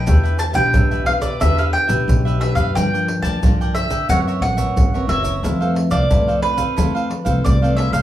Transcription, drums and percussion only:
0.07 pandeiro, shaker, surdo
0.25 pandeiro, shaker
0.39 pandeiro, shaker
0.54 pandeiro, shaker, surdo
0.74 pandeiro, shaker, surdo
0.92 pandeiro, shaker
1.06 pandeiro, surdo
1.22 pandeiro, shaker, surdo
1.41 pandeiro, shaker, surdo
1.58 pandeiro, shaker
1.73 pandeiro
1.89 pandeiro, shaker, surdo
2.09 pandeiro, shaker, surdo
2.27 pandeiro, shaker
2.41 pandeiro
2.56 pandeiro, shaker, surdo
2.76 pandeiro, shaker, surdo
2.95 pandeiro, shaker
3.08 pandeiro
3.24 pandeiro, shaker, surdo
3.43 pandeiro, shaker, surdo
3.61 pandeiro, shaker
3.76 pandeiro, shaker
3.90 pandeiro, shaker, surdo
4.09 pandeiro, shaker, surdo
4.28 pandeiro, shaker
4.42 pandeiro
4.58 pandeiro, shaker, surdo
4.77 pandeiro, shaker, surdo
4.95 pandeiro, shaker
5.09 pandeiro
5.25 pandeiro, shaker, surdo
5.44 pandeiro, shaker, surdo
5.62 pandeiro, shaker
5.76 pandeiro
5.91 pandeiro, shaker, surdo
6.11 pandeiro, shaker, surdo
6.29 pandeiro, shaker
6.42 pandeiro
6.58 pandeiro, shaker, surdo
6.78 pandeiro, shaker, surdo
6.96 pandeiro, shaker
7.11 pandeiro
7.26 pandeiro, shaker, surdo
7.46 pandeiro, shaker, surdo
7.64 pandeiro, shaker
7.78 pandeiro
7.94 pandeiro, shaker, surdo

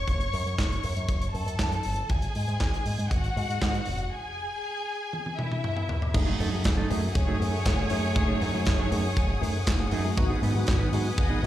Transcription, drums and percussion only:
0.08 kick, closed hi-hat
0.20 closed hi-hat
0.33 open hi-hat
0.47 closed hi-hat
0.58 kick, snare, clap
0.72 closed hi-hat
0.83 open hi-hat
0.97 closed hi-hat
1.09 kick, closed hi-hat
1.22 closed hi-hat
1.35 open hi-hat
1.48 closed hi-hat
1.59 kick, snare, clap
1.72 closed hi-hat
1.83 open hi-hat
1.96 closed hi-hat
2.09 kick, closed hi-hat
2.22 closed hi-hat
2.35 open hi-hat
2.49 closed hi-hat
2.60 kick, snare, clap
2.74 closed hi-hat
2.85 open hi-hat
2.99 closed hi-hat
3.11 kick, closed hi-hat
3.24 closed hi-hat
3.37 open hi-hat
3.50 closed hi-hat
3.62 kick, snare, clap
3.74 closed hi-hat
3.85 open hi-hat
3.98 closed hi-hat
5.13 high tom
5.26 high tom
5.39 mid tom
5.52 mid tom
5.64 mid tom
5.77 mid tom
5.89 floor tom
6.02 floor tom
6.14 kick, crash
6.40 open hi-hat
6.64 kick, snare, clap, closed hi-hat
6.91 open hi-hat
7.15 kick, closed hi-hat
7.42 open hi-hat
7.65 kick, snare, clap, closed hi-hat
7.90 open hi-hat
8.16 kick, closed hi-hat
8.41 open hi-hat
8.65 kick, snare, clap, closed hi-hat
8.92 open hi-hat
9.17 kick, closed hi-hat
9.43 open hi-hat
9.67 kick, snare, clap
9.91 open hi-hat
10.18 kick, closed hi-hat
10.43 open hi-hat
10.67 kick, snare, clap, closed hi-hat
10.93 open hi-hat
11.18 kick, closed hi-hat

